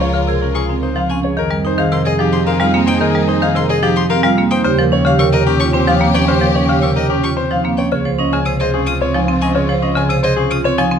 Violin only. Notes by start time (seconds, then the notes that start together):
0.55 C#6
1.09 G#5
1.92 C6
2.05 D#5
2.33 C6
2.46 F5
2.87 G5
3.56 C6
3.69 D#5
3.96 C6
4.10 F5
4.51 G5
5.19 C#6
5.33 D#5
5.60 C#6
6.14 G5
6.82 C#6
6.96 D#5
7.23 C#6
7.77 G5
8.45 D#6
8.60 D#5
8.86 D#6
9.41 G#5
10.10 D#6
10.24 D#5
10.51 D#6